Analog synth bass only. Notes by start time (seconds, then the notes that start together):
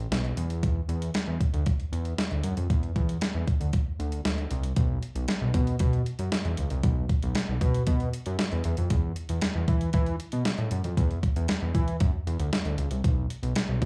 0.11 B1
0.37 E2
0.89 E2
1.28 E2
1.54 D2
1.92 E2
2.31 D2
2.44 F#2
2.57 F2
2.70 E2
2.96 E2
3.35 E2
3.60 D2
3.99 D2
4.25 D2
4.51 C2
4.77 B1
5.15 B1
5.42 B1
5.54 B2
5.80 B2
6.19 F#2
6.45 E2
6.58 C#2
6.71 C2
6.84 B1
7.23 B1
7.49 B1
7.61 B2
7.87 B2
8.26 F#2
8.52 E2
8.65 E2
8.78 F2
8.91 E2
9.30 E2
9.55 E2
9.68 E3
9.94 E3
10.33 B2
10.58 A2
10.71 F#2
10.85 F2
10.97 E2
11.36 E2
11.62 E2
11.75 E3
12.01 F#2
12.27 E2
12.40 D2
12.65 D2
12.78 C#2
12.91 C2
13.04 B1
13.43 B1
13.69 B1
13.82 B2